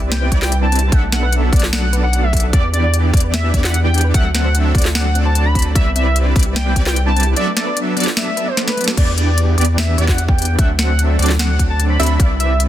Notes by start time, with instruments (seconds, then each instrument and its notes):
Already playing: sub bass C2, supersaw synth G3 C4 E4 B4 D5, synth pluck D5
0.02 synth arpeggio sound G4
0.12 soft synth lead G5, snare, closed hi-hat
0.22 synth arpeggio sound B3
0.32 sub bass C2, supersaw synth G3 C4 E4 B4 D5, synth arpeggio sound C4, synth pluck D5, kick, closed hi-hat
0.42 synth arpeggio sound B4, soft synth lead G5, snare
0.52 closed hi-hat
0.62 synth arpeggio sound D4, soft synth lead A5
0.72 synth arpeggio sound C4, closed hi-hat
0.75 closed hi-hat
0.79 synth arpeggio sound G4, closed hi-hat
0.92 sub bass B1, supersaw synth F#3 B3 D4 A4 E5, synth pluck E5, soft synth lead F#5, kick, closed hi-hat
1.03 synth arpeggio sound A3
1.12 synth arpeggio sound B3, soft synth lead F#5, snare, closed hi-hat
1.23 synth arpeggio sound B4
1.33 closed hi-hat
1.43 synth arpeggio sound D4
1.52 sub bass B1, supersaw synth F#3 B3 D4 A4 D5, synth arpeggio sound B3, synth pluck D5, kick, closed hi-hat
1.56 closed hi-hat
1.59 synth arpeggio sound A4, snare, closed hi-hat
1.73 soft synth lead F#5, snare, closed hi-hat
1.83 synth arpeggio sound A3
1.93 synth arpeggio sound B4, closed hi-hat
2.03 synth arpeggio sound B4, soft synth lead F#5
2.13 closed hi-hat
2.23 synth arpeggio sound A3, soft synth lead E5
2.33 synth arpeggio sound F#4, kick, closed hi-hat
2.37 closed hi-hat
2.40 synth arpeggio sound A4, closed hi-hat
2.53 sub bass E2, supersaw synth E3 B3 D4 G4 D5, soft synth lead D5, synth pluck D5, kick, closed hi-hat
2.63 synth arpeggio sound B3
2.73 synth arpeggio sound D4, soft synth lead D5, closed hi-hat
2.84 synth arpeggio sound D5
2.94 closed hi-hat
3.04 synth arpeggio sound E4
3.13 sub bass E2, supersaw synth E3 B3 D4 G4 D5, synth arpeggio sound D4, synth pluck D5, kick, closed hi-hat
3.17 closed hi-hat
3.20 synth arpeggio sound B4, closed hi-hat
3.34 soft synth lead E5, snare, closed hi-hat
3.44 synth arpeggio sound B3
3.54 sub bass E2, supersaw synth E3 B3 D4 G4 D5, synth arpeggio sound D4, synth pluck D5, kick, closed hi-hat
3.64 synth arpeggio sound D5, soft synth lead F#5, snare
3.74 closed hi-hat
3.84 synth arpeggio sound E4, soft synth lead G5
3.94 synth arpeggio sound D4, closed hi-hat
3.98 closed hi-hat
4.01 synth arpeggio sound B4, closed hi-hat
4.14 sub bass D2, supersaw synth F#3 C4 D4 A4 E5, synth pluck E5, soft synth lead F#5, kick, closed hi-hat
4.25 synth arpeggio sound A3
4.34 synth arpeggio sound C4, soft synth lead F#5, snare, closed hi-hat
4.45 synth arpeggio sound C5
4.55 closed hi-hat
4.65 synth arpeggio sound D4
4.75 sub bass D2, supersaw synth F#3 D4 D5, synth arpeggio sound C4, synth pluck D5, kick, closed hi-hat
4.78 closed hi-hat
4.82 synth arpeggio sound A4, snare, closed hi-hat
4.95 soft synth lead F#5, snare, closed hi-hat
5.05 synth arpeggio sound A3
5.15 synth arpeggio sound C4, closed hi-hat
5.25 synth arpeggio sound C5, soft synth lead A5
5.35 closed hi-hat
5.45 synth arpeggio sound D4, soft synth lead B5
5.55 synth arpeggio sound C4, kick, closed hi-hat
5.59 closed hi-hat
5.62 synth arpeggio sound A4, closed hi-hat
5.75 sub bass C2, supersaw synth G3 C4 E4 B4 D5, synth pluck D5, soft synth lead E5, kick, closed hi-hat
5.86 synth arpeggio sound B3
5.96 synth arpeggio sound C4, soft synth lead E5, closed hi-hat
6.06 synth arpeggio sound B4
6.16 closed hi-hat
6.26 synth arpeggio sound D4
6.36 sub bass C2, supersaw synth C4 E4 B4 D5, synth arpeggio sound C4, synth pluck D5, kick, closed hi-hat
6.39 closed hi-hat
6.43 synth arpeggio sound G4, closed hi-hat
6.56 soft synth lead G5, snare, closed hi-hat
6.66 synth arpeggio sound B3
6.76 sub bass C2, supersaw synth G3 C4 E4 B4 D5, synth arpeggio sound C4, synth pluck D5, kick, closed hi-hat
6.86 synth arpeggio sound B4, soft synth lead G5, snare
6.96 closed hi-hat
7.06 synth arpeggio sound D4, soft synth lead A5
7.16 synth arpeggio sound C4, closed hi-hat
7.20 closed hi-hat
7.23 synth arpeggio sound G4, closed hi-hat
7.36 supersaw synth F#3 B3 D4 A4 E5, soft synth lead D5, synth pluck E5, closed hi-hat
7.47 synth arpeggio sound A3
7.56 synth arpeggio sound B3, soft synth lead D5, snare, closed hi-hat
7.67 synth arpeggio sound B4
7.77 closed hi-hat
7.87 synth arpeggio sound D4
7.96 supersaw synth F#3 B3 D4 A4 D5, synth arpeggio sound B3, synth pluck D5, closed hi-hat
8.00 closed hi-hat
8.04 synth arpeggio sound A4, snare, closed hi-hat
8.17 soft synth lead E5, snare, closed hi-hat
8.27 synth arpeggio sound A3
8.37 synth arpeggio sound B4, closed hi-hat
8.47 synth arpeggio sound D4, soft synth lead C5
8.57 snare, closed hi-hat
8.67 synth arpeggio sound A3, soft synth lead B4, snare
8.77 synth arpeggio sound A3, closed hi-hat
8.81 closed hi-hat
8.84 synth arpeggio sound A4, snare, closed hi-hat
8.97 sub bass E2, supersaw synth E3 B3 D4 G4 D5, synth pluck D5, soft synth lead D5, kick, closed hi-hat, crash
9.18 soft synth lead D5, closed hi-hat
9.38 closed hi-hat
9.58 sub bass E2, supersaw synth E3 B3 D4 G4 D5, synth pluck D5, closed hi-hat
9.61 closed hi-hat
9.65 closed hi-hat
9.78 soft synth lead E5, snare, closed hi-hat
9.98 sub bass E2, supersaw synth E3 B3 D4 G4 D5, synth pluck D5, closed hi-hat
10.08 soft synth lead F#5, kick, snare
10.18 closed hi-hat
10.29 soft synth lead G5, kick
10.38 closed hi-hat
10.42 closed hi-hat
10.45 closed hi-hat
10.59 sub bass D2, supersaw synth F#3 C4 D4 A4 E5, synth pluck E5, soft synth lead F#5, kick, closed hi-hat
10.79 soft synth lead F#5, snare, closed hi-hat
10.99 closed hi-hat
11.19 sub bass D2, supersaw synth F#3 C4 D4 A4 D5, synth pluck D5, closed hi-hat
11.22 closed hi-hat
11.26 snare, closed hi-hat
11.39 soft synth lead F#5, snare, closed hi-hat
11.59 kick, closed hi-hat
11.70 soft synth lead A5
11.80 closed hi-hat
11.90 soft synth lead B5
12.00 sub bass D2, supersaw synth F#3 C4 D4 A4 E5, synth pluck E5, closed hi-hat
12.03 closed hi-hat
12.06 closed hi-hat
12.20 sub bass C2, supersaw synth C4 E4 B4 D5, synth pluck D5, soft synth lead E5, kick, closed hi-hat
12.40 soft synth lead E5, closed hi-hat
12.60 closed hi-hat